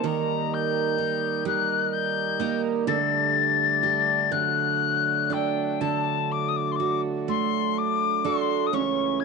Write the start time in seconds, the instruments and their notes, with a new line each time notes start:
Already playing: steel-string acoustic guitar G3 A#3 D#4
0.04 steel-string acoustic guitar D#3 A#4, harmonium G3 D#4 A#4, tin whistle A#5
0.53 tin whistle G6
0.98 steel-string acoustic guitar D#4
1.45 steel-string acoustic guitar G3, tin whistle F#6
1.92 tin whistle G6
2.40 steel-string acoustic guitar A#3 D#4 A#4
2.87 steel-string acoustic guitar D3 A4, harmonium A3 D4, tin whistle A6
3.83 steel-string acoustic guitar G4
4.31 steel-string acoustic guitar D3, harmonium F#3, tin whistle F#6
5.30 steel-string acoustic guitar D4 A4, tin whistle G5
5.80 steel-string acoustic guitar D3 A4, tin whistle A5
6.31 tin whistle D6
6.48 tin whistle D#6
6.56 tin whistle D6
6.71 tin whistle C6 D6
6.80 steel-string acoustic guitar F#4
7.28 steel-string acoustic guitar A3, tin whistle C6
7.78 tin whistle D6
8.24 steel-string acoustic guitar D4 F#4 A4, tin whistle C6
8.66 tin whistle D#6
8.70 harmonium C#2 E3 C#4, steel-string acoustic guitar C#4 C#5, tin whistle C#6
9.19 tin whistle G#6